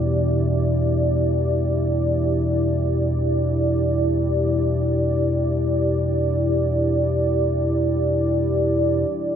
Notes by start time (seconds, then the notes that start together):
Already playing: E2 B2 E4 G4 D5 E5
9.11 E2 B2